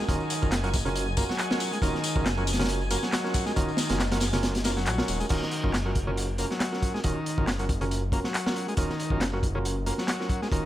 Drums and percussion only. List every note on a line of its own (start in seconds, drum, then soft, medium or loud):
0.09 kick loud
0.09 closed hi-hat loud
0.09 tambourine soft
0.20 tambourine soft
0.30 closed hi-hat medium
0.30 open hi-hat medium
0.30 tambourine medium
0.42 kick loud
0.42 tambourine soft
0.51 snare loud
0.51 clap loud
0.51 closed hi-hat medium
0.51 tambourine soft
0.64 closed hi-hat soft
0.64 tambourine soft
0.74 kick loud
0.74 closed hi-hat medium
0.74 open hi-hat medium
0.74 tambourine medium
0.86 closed hi-hat soft
0.86 tambourine soft
0.95 closed hi-hat medium
0.95 tambourine soft
1.07 tambourine soft
1.17 kick loud
1.17 closed hi-hat medium
1.17 open hi-hat medium
1.17 tambourine medium
1.29 snare medium
1.29 tambourine soft
1.38 clap loud
1.38 closed hi-hat medium
1.38 tambourine soft
1.50 snare loud
1.50 tambourine soft
1.60 closed hi-hat medium
1.60 open hi-hat medium
1.60 tambourine medium
1.72 closed hi-hat soft
1.72 tambourine soft
1.82 kick loud
1.82 closed hi-hat medium
1.82 tambourine soft
1.94 snare soft
1.94 tambourine soft
2.04 closed hi-hat medium
2.04 open hi-hat medium
2.04 tambourine medium
2.16 kick medium
2.26 snare loud
2.26 clap loud
2.26 closed hi-hat medium
2.26 tambourine soft
2.37 tambourine soft
2.47 closed hi-hat medium
2.47 open hi-hat medium
2.47 tambourine medium
2.53 snare medium
2.53 closed hi-hat medium
2.59 snare medium
2.59 closed hi-hat medium
2.59 tambourine soft
2.64 snare medium
2.64 closed hi-hat medium
2.69 closed hi-hat loud
2.69 tambourine soft
2.81 tambourine soft
2.91 closed hi-hat medium
2.91 open hi-hat medium
2.91 tambourine medium
3.03 snare medium
3.03 tambourine soft
3.12 snare loud
3.12 clap loud
3.12 closed hi-hat medium
3.12 tambourine soft
3.25 snare soft
3.25 tambourine soft
3.34 kick loud
3.34 closed hi-hat medium
3.34 open hi-hat medium
3.34 tambourine medium
3.46 snare soft
3.46 tambourine soft
3.56 kick loud
3.56 closed hi-hat medium
3.56 tambourine soft
3.68 tambourine soft
3.77 snare loud
3.77 closed hi-hat medium
3.77 open hi-hat medium
3.77 tambourine medium
3.89 snare loud
3.89 closed hi-hat medium
3.89 tambourine soft
4.00 snare loud
4.00 clap loud
4.00 closed hi-hat medium
4.00 tambourine soft
4.12 snare loud
4.12 closed hi-hat medium
4.12 tambourine soft
4.20 snare loud
4.20 closed hi-hat medium
4.20 open hi-hat medium
4.20 tambourine medium
4.33 snare loud
4.33 closed hi-hat medium
4.33 tambourine soft
4.43 snare loud
4.43 closed hi-hat medium
4.43 tambourine soft
4.55 snare medium
4.55 closed hi-hat medium
4.55 tambourine soft
4.64 snare loud
4.64 closed hi-hat medium
4.64 open hi-hat medium
4.64 tambourine medium
4.77 snare medium
4.77 tambourine soft
4.86 clap loud
4.86 closed hi-hat medium
4.86 tambourine soft
4.98 snare loud
5.08 closed hi-hat medium
5.08 open hi-hat medium
5.08 tambourine medium
5.20 closed hi-hat soft
5.20 tambourine soft
5.29 kick loud
5.29 closed hi-hat medium
5.29 crash medium
5.42 snare soft
5.51 closed hi-hat medium
5.64 kick medium
5.73 snare loud
5.73 clap loud
5.73 closed hi-hat medium
5.95 kick medium
5.95 closed hi-hat medium
6.17 closed hi-hat medium
6.38 closed hi-hat medium
6.51 snare soft
6.60 snare loud
6.60 clap loud
6.60 closed hi-hat medium
6.73 snare soft
6.82 kick medium
6.82 closed hi-hat medium
6.95 snare soft
7.04 kick loud
7.04 closed hi-hat medium
7.26 closed hi-hat medium
7.38 kick loud
7.47 snare loud
7.47 clap loud
7.47 closed hi-hat medium
7.59 closed hi-hat soft
7.69 kick loud
7.69 closed hi-hat medium
7.81 closed hi-hat soft
7.91 closed hi-hat medium
8.12 kick medium
8.12 closed hi-hat medium
8.24 snare medium
8.34 clap loud
8.34 closed hi-hat medium
8.47 snare loud
8.56 closed hi-hat medium
8.68 closed hi-hat soft
8.77 kick loud
8.77 closed hi-hat medium
8.89 snare soft
9.00 closed hi-hat medium
9.10 kick medium
9.21 snare loud
9.21 clap loud
9.21 closed hi-hat medium
9.43 kick medium
9.43 closed hi-hat medium
9.65 closed hi-hat medium
9.86 closed hi-hat medium
9.98 snare soft
10.08 snare loud
10.08 clap loud
10.08 closed hi-hat medium
10.20 snare soft
10.29 kick medium
10.29 closed hi-hat medium
10.42 snare soft
10.52 kick loud
10.52 closed hi-hat medium